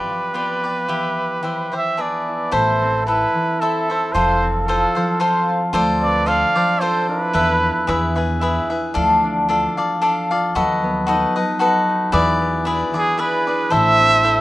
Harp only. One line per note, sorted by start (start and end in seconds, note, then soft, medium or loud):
0.00 0.40 C4 medium
0.09 0.95 F3 medium
0.34 1.98 B3 medium
0.63 0.94 F4 medium
0.88 1.41 E3 medium
1.42 1.71 E3 medium
1.72 2.04 E3 soft
1.98 2.88 B3 medium
2.28 3.06 E4 medium
2.53 3.34 E3 medium
2.82 4.42 C4 medium
3.07 3.89 E4 medium
3.35 4.20 E3 medium
3.61 4.20 E5 medium
3.90 4.20 E4 medium
4.14 4.95 F3 medium
4.42 6.01 C4 medium
4.68 5.49 F4 medium
4.96 5.72 F3 medium
5.21 6.87 F5 medium
5.49 6.80 F4 medium
5.73 6.54 F3 medium
6.02 7.68 C4 medium
6.27 7.08 D4 medium
6.55 7.39 F3 medium
6.80 7.40 F4 medium
7.08 9.24 D4 medium
7.34 7.92 E3 medium
7.62 10.73 B3 medium
7.87 8.69 E4 medium
8.15 9.00 E3 medium
8.40 9.01 E5 medium
8.69 9.01 E4 medium
8.95 9.76 F3 medium
9.24 11.14 D4 medium
9.49 10.31 F4 medium
9.78 10.60 F3 medium
10.03 10.62 F5 medium
10.32 10.62 F4 medium
10.56 11.35 F#3 medium
10.84 12.41 B3 medium
11.08 11.89 D#4 medium
11.36 12.18 F#3 medium
11.61 14.05 F#4 medium
11.89 12.19 D#4 medium
12.13 12.92 E3 medium
12.41 14.06 B3 medium
12.65 13.46 D4 medium
12.93 13.70 E3 medium
13.17 14.23 E4 medium
13.46 14.41 D4 medium
13.71 14.41 E3 medium
14.00 14.41 C4 medium
14.24 14.41 E4 medium